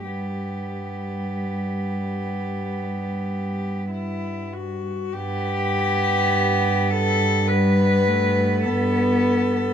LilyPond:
<<
  \new Staff \with { instrumentName = "Cello" } { \time 4/4 \key g \major \tempo 4 = 50 g'2. e'8 fis'8 | g'4. a'8 b'4 a'4 | }
  \new Staff \with { instrumentName = "Cello" } { \time 4/4 \key g \major b1 | b2 b2 | }
  \new Staff \with { instrumentName = "Cello" } { \clef bass \time 4/4 \key g \major g1 | r2 g8 a8 b4 | }
  \new Staff \with { instrumentName = "Cello" } { \clef bass \time 4/4 \key g \major g,1 | g,1 | }
>>